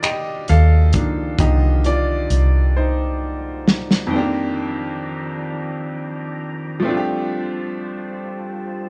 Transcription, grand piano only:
0.00 0.94 D#3 medium
0.00 0.94 F3 soft
0.00 0.95 A#3 soft
0.00 0.95 D4 medium
0.00 1.86 F4 medium
0.00 0.45 G4 medium
0.00 1.86 D5 medium
0.00 0.50 D#5 medium
0.49 1.36 A4 medium
0.49 1.42 F5 loud
0.94 1.35 D#3 soft
0.94 1.35 F3 soft
0.94 1.36 A#3 soft
0.94 1.36 D4 medium
1.39 2.00 D3 medium
1.39 2.00 D#3 medium
1.39 2.00 F3 soft
1.39 2.00 A#3 soft
1.39 1.82 G4 medium
1.39 1.82 D#5 loud
1.86 2.72 F4 medium
1.86 2.79 D5 medium
2.77 3.75 D#4 medium
2.77 3.74 C5 medium
4.07 6.78 F2 medium
4.07 6.79 D#3 medium
4.11 4.18 A3 medium
4.11 6.81 C4 medium
4.16 6.84 A#3 medium
4.16 6.83 D4 medium
4.16 6.84 G4 medium
6.80 8.89 F3 medium
6.80 8.89 A3 medium
6.85 8.89 C4 medium
6.85 8.89 D4 medium
6.91 6.94 F4 medium
6.97 8.89 G4 medium

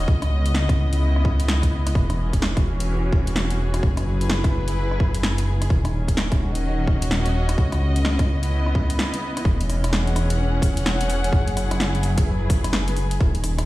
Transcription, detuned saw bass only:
0.08 1.94 C#2 medium
1.95 3.81 E1 medium
3.83 5.69 F#1 medium
5.70 7.56 D#1 medium
7.58 8.99 C#2 medium
9.45 11.31 E1 medium
11.33 13.19 F#1 medium
13.20 13.65 D#1 medium

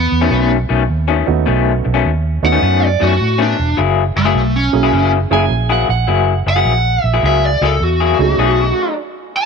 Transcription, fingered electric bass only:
0.12 0.28 E2 medium
0.31 0.64 B1 loud
0.70 0.86 B1 medium
0.89 1.22 D#2 medium
1.28 1.44 D#2 medium
1.48 1.80 B1 loud
1.86 2.02 B1 medium
2.05 2.38 D#2 medium
2.43 2.59 D#2 medium
2.62 2.95 F#2 medium
3.02 3.17 F#2 medium
3.21 3.53 A2 medium
3.59 3.75 E1 medium
3.78 4.11 F#1 medium
4.16 4.32 F#1 medium
4.35 4.68 B1 medium
4.74 4.90 B1 medium
4.93 5.25 F#1 medium
5.31 5.47 F#1 medium
5.50 5.83 A#1 medium
5.89 6.05 A#1 medium
6.08 6.41 F#1 medium
6.46 6.63 F#1 medium
6.65 6.98 A#1 medium
7.04 7.20 A#1 medium
7.23 7.56 C#2 medium
7.61 7.78 C#2 medium
7.80 8.13 E2 medium
8.19 8.35 C#2 loud
8.38 8.71 B1 loud

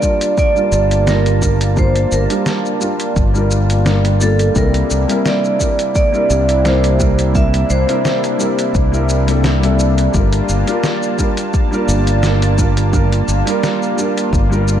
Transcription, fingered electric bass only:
0.72 2.05 G1 medium
2.12 2.26 G1 medium
3.16 4.49 G1 medium
4.56 4.82 C2 medium
4.91 5.05 C2 medium
6.30 7.63 C2 loud
7.70 7.84 C2 medium
8.75 10.07 C2 medium
10.14 10.40 G1 medium
10.49 10.63 G1 medium
11.88 13.21 G1 medium
13.28 13.42 G1 medium
14.33 14.80 G1 medium

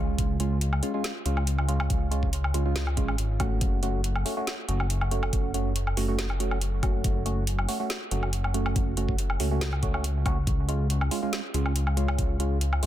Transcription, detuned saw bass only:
0.00 0.17 C#2 loud
0.19 0.81 C#2 medium
1.26 1.88 C#2 medium
1.90 2.53 C#2 medium
2.54 3.17 C#2 medium
3.18 3.60 G#1 medium
3.62 4.24 F#1 loud
4.69 5.31 F#1 medium
5.33 5.96 F#1 medium
5.97 7.03 F#1 medium
7.04 7.67 F#1 medium
8.11 8.74 F#1 medium
8.76 9.38 F#1 loud
9.40 10.45 C#2 medium
10.47 11.10 C#2 loud
11.54 12.17 C#2 loud
12.19 12.81 C#2 medium
12.83 12.86 C#2 medium

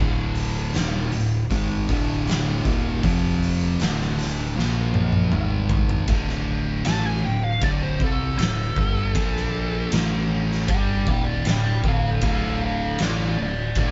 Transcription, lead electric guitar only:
6.87 7.05 A5 loud
7.06 7.25 G#5 medium
7.25 7.44 G5 medium
7.44 7.63 F5 medium
7.64 7.82 D5 medium
7.83 8.01 C5 medium
8.03 8.37 A4 loud
8.38 9.88 A4 loud
10.69 11.08 D5 medium
10.69 11.07 G5 medium
11.09 11.45 D5 medium
11.09 11.46 G5 medium
11.49 11.84 D5 medium
11.49 11.86 G5 medium
11.88 12.23 A4 medium
11.88 12.24 F5 medium
12.26 12.60 A4 medium
12.26 12.62 F5 medium
12.65 13.00 A4 medium
12.65 13.01 F5 loud
13.02 13.37 F4 medium
13.02 13.39 D5 medium
13.42 13.76 F4 medium
13.42 13.78 D5 medium
13.78 13.91 F4 medium
13.78 13.91 D5 medium

